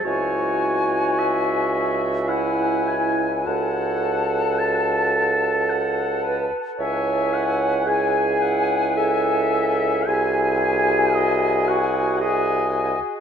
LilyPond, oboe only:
\new Staff \with { instrumentName = "Oboe" } { \time 3/4 \key cis \minor \tempo 4 = 54 cis''4 e''4 fis''8 gis''8 | fis''4 a''4 fis''8. r16 | e''8 fis''8 gis''8 fis''8 e''4 | gis''4 dis''8 fis''8 dis''8. r16 | }